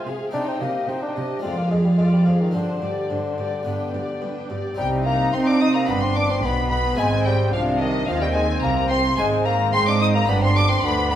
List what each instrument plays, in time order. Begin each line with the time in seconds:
Already playing: harpsichord G#3 C4 F4
0.06 cello section C3, harpsichord C3, violin section G#4 F5, viola section G#4
0.31 cello section C3, harpsichord C3 C4 D#4, bassoon D4, viola section D#4, violin section C5 G5
0.48 bassoon C4
0.61 cello section C3, harpsichord C3, bassoon A#3, viola section G4, violin section D#5
0.88 cello section C3, harpsichord C3, bassoon C4, viola section D#4, violin section C5 G5
1.02 bassoon D4
1.15 cello section C3, harpsichord C3, viola section G4, violin section D#5
1.39 harpsichord G#3 D4, bassoon C4, violin section D5 F5
1.43 cello section F2, harpsichord F2, viola section F4
1.57 bassoon A#3
1.70 cello section F2, harpsichord F2, bassoon G#3, viola section G#4, violin section D5 F5
1.85 bassoon G3
1.97 cello section F2, harpsichord F2, bassoon G#3, viola section F4, violin section D5 F5
2.13 bassoon G3
2.26 harpsichord F2, cello section F2, bassoon F3, viola section G#4, violin section D5 F5
2.41 bassoon D#3
2.51 cello section G2, harpsichord G2 C4 D4, bassoon D3, viola section D4, violin section C5
2.82 cello section G2, harpsichord G2, viola section G4, violin section D5
3.10 cello section G2, harpsichord G2, viola section D4, violin section C5
3.37 cello section G2, harpsichord G2, viola section G4, violin section D5
3.63 cello section G2, harpsichord G2 B3 D4, viola section D4, violin section G5
3.67 violin section B4
3.94 cello section G2, harpsichord G2, viola section G4, violin section D5
4.22 harpsichord G2, cello section G2, viola section D4, violin section B4 G5
4.50 harpsichord G2, cello section G2, viola section G4, violin section D5
4.74 double bass section C2, harpsichord C3 C4 D#4, cello section C3, bassoon G3, violin section G5
4.79 viola section D#4, violin section G5
5.05 bassoon A#3, violin section A#5
5.32 double bass section C3, harpsichord C4, cello section C4, bassoon C4, violin section C6
5.46 bassoon D4, violin section D6
5.60 bassoon D#4, violin section D#6
5.74 bassoon A#3, violin section A#5
5.85 double bass section G1, harpsichord G2 D4 G4, cello section G2, bassoon B3, viola section D4, violin section B5
6.01 bassoon C4, violin section C6
6.15 bassoon D4, violin section D6
6.29 bassoon C4, violin section C6
6.43 double bass section B1, harpsichord B2, cello section B2, viola section B3, bassoon B3, violin section B5
6.70 bassoon B3, violin section B5
6.94 double bass section G#1, harpsichord G#3 C4 C5, violin section G#5
6.98 cello section G#2, harpsichord G#2, bassoon G#3, viola section C4, violin section G#5
7.25 bassoon G3, violin section G5
7.51 double bass section C2, cello section C3, harpsichord C3, bassoon F3, viola section D4, violin section F5
7.80 bassoon D#3, violin section D#5
8.07 double bass section D#2, cello section D#3, harpsichord D#3, bassoon F3, viola section C4, violin section F5
8.21 bassoon G3, violin section G5
8.35 bassoon G#3, violin section G#5
8.61 double bass section C2, cello section C3, harpsichord C3, bassoon A#3, violin section A#5
8.89 bassoon C4, violin section C6
9.16 double bass section G#1, cello section G#2, harpsichord G#2 D#4 C5, bassoon G#3, viola section C4, violin section G#5
9.45 bassoon A#3, violin section A#5
9.73 double bass section G#2, harpsichord G#3, cello section G#3, bassoon C4, violin section C6
9.86 bassoon D4, violin section D6
10.00 bassoon D#4, violin section D#6
10.14 bassoon A#3, violin section A#5
10.25 double bass section G1, cello section G2, harpsichord G2 G4 D5, bassoon B3, viola section D4, violin section B5
10.42 bassoon C4, violin section C6
10.55 bassoon D4, violin section D6
10.69 bassoon C4, violin section C6
10.82 double bass section D2, harpsichord D2, cello section D2, bassoon B3, viola section D4, violin section B5
11.10 bassoon B3, violin section B5